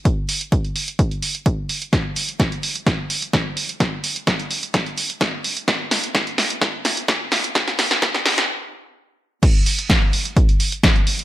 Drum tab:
CC |----------------|----------------|----------------|----------------|
HH |x-oxxxoxxxoxx-ox|x-oxxxoxx-oxx-ox|x-oxxxoxxxoxx-ox|x-oxxxoxx-oxx-ox|
SD |----------------|o---o---o---o---|o---o---o---o---|o-o-o-o-o-o-o-o-|
BD |o---o---o---o---|o---o---o---o---|o---o---o---o---|o---o---o---o---|

CC |----------------|x---------------|
HH |xxoxxxox--------|x-oxx-oxxxoxxxox|
SD |oooooooo--------|----o-------o---|
BD |o---o-----------|o---o---o---o---|